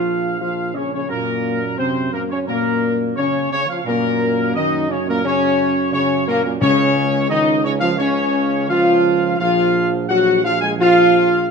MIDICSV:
0, 0, Header, 1, 6, 480
1, 0, Start_track
1, 0, Tempo, 690449
1, 761, Time_signature, 4, 2, 24, 8
1, 5560, Tempo, 707547
1, 7941, End_track
2, 0, Start_track
2, 0, Title_t, "Trumpet section"
2, 0, Program_c, 0, 61
2, 0, Note_on_c, 0, 77, 67
2, 253, Note_off_c, 0, 77, 0
2, 277, Note_on_c, 0, 77, 65
2, 502, Note_off_c, 0, 77, 0
2, 522, Note_on_c, 0, 73, 73
2, 632, Note_off_c, 0, 73, 0
2, 640, Note_on_c, 0, 73, 55
2, 752, Note_off_c, 0, 73, 0
2, 754, Note_on_c, 0, 70, 79
2, 1210, Note_off_c, 0, 70, 0
2, 1230, Note_on_c, 0, 72, 72
2, 1461, Note_off_c, 0, 72, 0
2, 1473, Note_on_c, 0, 70, 66
2, 1530, Note_off_c, 0, 70, 0
2, 1593, Note_on_c, 0, 73, 65
2, 1651, Note_off_c, 0, 73, 0
2, 1709, Note_on_c, 0, 70, 74
2, 2076, Note_off_c, 0, 70, 0
2, 2194, Note_on_c, 0, 73, 78
2, 2423, Note_off_c, 0, 73, 0
2, 2442, Note_on_c, 0, 73, 89
2, 2556, Note_off_c, 0, 73, 0
2, 2562, Note_on_c, 0, 77, 68
2, 2677, Note_off_c, 0, 77, 0
2, 2683, Note_on_c, 0, 70, 86
2, 3142, Note_off_c, 0, 70, 0
2, 3162, Note_on_c, 0, 75, 83
2, 3390, Note_off_c, 0, 75, 0
2, 3408, Note_on_c, 0, 73, 70
2, 3529, Note_off_c, 0, 73, 0
2, 3535, Note_on_c, 0, 70, 73
2, 3644, Note_off_c, 0, 70, 0
2, 3647, Note_on_c, 0, 73, 83
2, 4096, Note_off_c, 0, 73, 0
2, 4114, Note_on_c, 0, 73, 86
2, 4341, Note_off_c, 0, 73, 0
2, 4361, Note_on_c, 0, 70, 80
2, 4462, Note_off_c, 0, 70, 0
2, 4471, Note_on_c, 0, 70, 63
2, 4527, Note_off_c, 0, 70, 0
2, 4589, Note_on_c, 0, 73, 97
2, 5044, Note_off_c, 0, 73, 0
2, 5069, Note_on_c, 0, 75, 84
2, 5295, Note_off_c, 0, 75, 0
2, 5305, Note_on_c, 0, 73, 83
2, 5362, Note_off_c, 0, 73, 0
2, 5418, Note_on_c, 0, 77, 87
2, 5539, Note_off_c, 0, 77, 0
2, 5547, Note_on_c, 0, 73, 83
2, 6001, Note_off_c, 0, 73, 0
2, 6024, Note_on_c, 0, 77, 89
2, 6476, Note_off_c, 0, 77, 0
2, 6497, Note_on_c, 0, 77, 93
2, 6852, Note_off_c, 0, 77, 0
2, 6967, Note_on_c, 0, 78, 84
2, 7195, Note_off_c, 0, 78, 0
2, 7211, Note_on_c, 0, 77, 91
2, 7327, Note_off_c, 0, 77, 0
2, 7332, Note_on_c, 0, 80, 82
2, 7388, Note_off_c, 0, 80, 0
2, 7455, Note_on_c, 0, 77, 90
2, 7927, Note_off_c, 0, 77, 0
2, 7941, End_track
3, 0, Start_track
3, 0, Title_t, "French horn section"
3, 0, Program_c, 1, 60
3, 0, Note_on_c, 1, 65, 90
3, 251, Note_off_c, 1, 65, 0
3, 278, Note_on_c, 1, 65, 71
3, 503, Note_off_c, 1, 65, 0
3, 513, Note_on_c, 1, 61, 82
3, 629, Note_off_c, 1, 61, 0
3, 647, Note_on_c, 1, 61, 74
3, 756, Note_off_c, 1, 61, 0
3, 759, Note_on_c, 1, 58, 85
3, 1115, Note_off_c, 1, 58, 0
3, 1233, Note_on_c, 1, 60, 80
3, 1462, Note_off_c, 1, 60, 0
3, 1486, Note_on_c, 1, 58, 79
3, 1598, Note_off_c, 1, 58, 0
3, 1608, Note_on_c, 1, 61, 82
3, 1720, Note_off_c, 1, 61, 0
3, 1724, Note_on_c, 1, 58, 93
3, 2179, Note_off_c, 1, 58, 0
3, 2208, Note_on_c, 1, 61, 89
3, 2431, Note_off_c, 1, 61, 0
3, 2452, Note_on_c, 1, 61, 92
3, 2505, Note_off_c, 1, 61, 0
3, 2583, Note_on_c, 1, 65, 84
3, 2634, Note_off_c, 1, 65, 0
3, 2698, Note_on_c, 1, 58, 92
3, 3149, Note_off_c, 1, 58, 0
3, 3171, Note_on_c, 1, 63, 117
3, 3405, Note_on_c, 1, 61, 94
3, 3412, Note_off_c, 1, 63, 0
3, 3528, Note_off_c, 1, 61, 0
3, 3540, Note_on_c, 1, 58, 84
3, 3646, Note_off_c, 1, 58, 0
3, 3647, Note_on_c, 1, 61, 106
3, 4097, Note_off_c, 1, 61, 0
3, 4126, Note_on_c, 1, 61, 88
3, 4347, Note_off_c, 1, 61, 0
3, 4360, Note_on_c, 1, 58, 99
3, 4472, Note_off_c, 1, 58, 0
3, 4481, Note_on_c, 1, 58, 82
3, 4535, Note_off_c, 1, 58, 0
3, 4593, Note_on_c, 1, 61, 102
3, 5046, Note_off_c, 1, 61, 0
3, 5076, Note_on_c, 1, 63, 108
3, 5299, Note_off_c, 1, 63, 0
3, 5314, Note_on_c, 1, 61, 93
3, 5436, Note_off_c, 1, 61, 0
3, 5446, Note_on_c, 1, 65, 90
3, 5499, Note_off_c, 1, 65, 0
3, 5561, Note_on_c, 1, 61, 105
3, 6008, Note_off_c, 1, 61, 0
3, 6038, Note_on_c, 1, 65, 106
3, 6482, Note_off_c, 1, 65, 0
3, 6509, Note_on_c, 1, 65, 103
3, 6870, Note_off_c, 1, 65, 0
3, 6985, Note_on_c, 1, 66, 105
3, 7205, Note_off_c, 1, 66, 0
3, 7217, Note_on_c, 1, 65, 92
3, 7271, Note_off_c, 1, 65, 0
3, 7352, Note_on_c, 1, 68, 85
3, 7404, Note_off_c, 1, 68, 0
3, 7464, Note_on_c, 1, 65, 119
3, 7931, Note_off_c, 1, 65, 0
3, 7941, End_track
4, 0, Start_track
4, 0, Title_t, "Timpani"
4, 0, Program_c, 2, 47
4, 4598, Note_on_c, 2, 49, 84
4, 5288, Note_off_c, 2, 49, 0
4, 7941, End_track
5, 0, Start_track
5, 0, Title_t, "Trombone section"
5, 0, Program_c, 3, 61
5, 0, Note_on_c, 3, 53, 78
5, 257, Note_off_c, 3, 53, 0
5, 282, Note_on_c, 3, 53, 69
5, 505, Note_off_c, 3, 53, 0
5, 523, Note_on_c, 3, 49, 66
5, 634, Note_off_c, 3, 49, 0
5, 657, Note_on_c, 3, 49, 71
5, 761, Note_off_c, 3, 49, 0
5, 778, Note_on_c, 3, 46, 71
5, 1222, Note_off_c, 3, 46, 0
5, 1243, Note_on_c, 3, 48, 73
5, 1468, Note_off_c, 3, 48, 0
5, 1481, Note_on_c, 3, 46, 61
5, 1537, Note_off_c, 3, 46, 0
5, 1605, Note_on_c, 3, 49, 68
5, 1660, Note_off_c, 3, 49, 0
5, 1724, Note_on_c, 3, 46, 74
5, 2179, Note_off_c, 3, 46, 0
5, 2202, Note_on_c, 3, 49, 78
5, 2427, Note_off_c, 3, 49, 0
5, 2439, Note_on_c, 3, 49, 74
5, 2551, Note_on_c, 3, 53, 80
5, 2555, Note_off_c, 3, 49, 0
5, 2674, Note_on_c, 3, 46, 82
5, 2680, Note_off_c, 3, 53, 0
5, 3137, Note_off_c, 3, 46, 0
5, 3168, Note_on_c, 3, 51, 87
5, 3393, Note_off_c, 3, 51, 0
5, 3401, Note_on_c, 3, 49, 67
5, 3457, Note_off_c, 3, 49, 0
5, 3517, Note_on_c, 3, 46, 72
5, 3634, Note_off_c, 3, 46, 0
5, 3640, Note_on_c, 3, 49, 85
5, 4000, Note_off_c, 3, 49, 0
5, 4118, Note_on_c, 3, 49, 89
5, 4343, Note_off_c, 3, 49, 0
5, 4358, Note_on_c, 3, 46, 72
5, 4467, Note_off_c, 3, 46, 0
5, 4475, Note_on_c, 3, 46, 82
5, 4589, Note_off_c, 3, 46, 0
5, 4598, Note_on_c, 3, 49, 97
5, 5048, Note_off_c, 3, 49, 0
5, 5077, Note_on_c, 3, 51, 83
5, 5300, Note_off_c, 3, 51, 0
5, 5314, Note_on_c, 3, 49, 79
5, 5427, Note_off_c, 3, 49, 0
5, 5428, Note_on_c, 3, 53, 83
5, 5544, Note_off_c, 3, 53, 0
5, 5556, Note_on_c, 3, 49, 91
5, 6032, Note_off_c, 3, 49, 0
5, 6036, Note_on_c, 3, 53, 96
5, 6500, Note_off_c, 3, 53, 0
5, 6508, Note_on_c, 3, 53, 88
5, 6956, Note_off_c, 3, 53, 0
5, 6982, Note_on_c, 3, 54, 77
5, 7203, Note_off_c, 3, 54, 0
5, 7215, Note_on_c, 3, 53, 72
5, 7328, Note_off_c, 3, 53, 0
5, 7339, Note_on_c, 3, 56, 82
5, 7450, Note_on_c, 3, 53, 89
5, 7452, Note_off_c, 3, 56, 0
5, 7924, Note_off_c, 3, 53, 0
5, 7941, End_track
6, 0, Start_track
6, 0, Title_t, "Tuba"
6, 0, Program_c, 4, 58
6, 0, Note_on_c, 4, 34, 60
6, 734, Note_off_c, 4, 34, 0
6, 756, Note_on_c, 4, 42, 59
6, 2467, Note_off_c, 4, 42, 0
6, 2684, Note_on_c, 4, 42, 74
6, 4571, Note_off_c, 4, 42, 0
6, 4599, Note_on_c, 4, 37, 81
6, 6479, Note_off_c, 4, 37, 0
6, 6507, Note_on_c, 4, 34, 77
6, 7941, Note_off_c, 4, 34, 0
6, 7941, End_track
0, 0, End_of_file